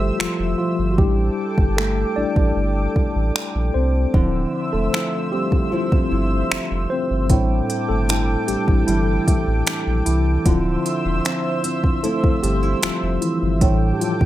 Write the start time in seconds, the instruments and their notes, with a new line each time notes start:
Already playing: sub bass G1, tine electric piano G3 A3 G4 A4, analog synth pad C5 E5 E6
0.19 sub bass F1, tine electric piano F3 F4, finger snap
0.40 sub bass F1
0.58 tine electric piano F3 F4
0.79 sub bass G1
0.91 tine electric piano F#4
0.98 sub bass A1, tine electric piano G3 D4 E4 G4, analog synth pad A4 G5 D6, kick
1.58 sub bass G1, kick
1.77 tine electric piano A3 A4, finger snap
2.16 sub bass A1, tine electric piano G3 D4 E4 D5
2.36 sub bass A1, kick
2.56 sub bass G1
2.96 kick
3.16 sub bass A1
3.36 finger snap
3.55 sub bass A#1
3.74 sub bass C2, tine electric piano C4 C5
4.14 sub bass D1, nylon-string guitar D3, tine electric piano F3 C4 E4, analog synth pad C5 E5 E6, kick
4.73 sub bass E1, tine electric piano A3 A4
4.93 nylon-string guitar F3 C4 E4, finger snap
5.32 tine electric piano G3 G4, nylon-string guitar C4
5.52 kick
5.71 nylon-string guitar F3 C4 E4, tine electric piano F3 C4 E4 F4
5.92 kick
6.11 sub bass G1, nylon-string guitar E4
6.51 sub bass F1, nylon-string guitar C4, finger snap
6.71 sub bass F1
6.90 tine electric piano C4 C5
7.11 sub bass G1
7.30 sub bass A1, nylon-string guitar A2, tine electric piano G3 D4 E4, analog synth pad A4 G5 D6, kick, closed hi-hat
7.70 closed hi-hat
7.89 sub bass G1, tine electric piano A3 A4
8.09 nylon-string guitar G3 D4 E4, finger snap, closed hi-hat
8.48 sub bass A1, tine electric piano G3 D4 E4 G4, nylon-string guitar D4, closed hi-hat
8.68 sub bass A1, kick
8.87 sub bass G1, tine electric piano E3 E4, nylon-string guitar G3 D4 E4, closed hi-hat
9.27 nylon-string guitar E4, kick, closed hi-hat
9.47 sub bass A1
9.67 nylon-string guitar D4, finger snap, closed hi-hat
9.87 sub bass A#1
10.06 sub bass C2, tine electric piano E3 E4, closed hi-hat
10.45 sub bass D1, nylon-string guitar D3, tine electric piano F3 C4 E4 F4, analog synth pad C5 E5 E6, kick, closed hi-hat
10.86 closed hi-hat
11.05 sub bass E1
11.25 nylon-string guitar F3 C4 E4, finger snap, closed hi-hat
11.64 nylon-string guitar C4, closed hi-hat
11.84 kick
12.03 nylon-string guitar F3 C4 E4, tine electric piano A3 A4, closed hi-hat
12.24 kick
12.43 sub bass G1, tine electric piano G3 G4, nylon-string guitar D4, closed hi-hat
12.63 nylon-string guitar E4
12.82 sub bass F1, tine electric piano F3 F4, nylon-string guitar C4, finger snap, closed hi-hat
13.03 sub bass F1
13.22 tine electric piano E3 E4, closed hi-hat
13.43 sub bass G1
13.61 sub bass A1, nylon-string guitar A2, tine electric piano G3 D4 E4, analog synth pad A4 G5 D6, kick, closed hi-hat
13.93 tine electric piano G4
14.00 tine electric piano F3 F4, closed hi-hat
14.21 sub bass G1, kick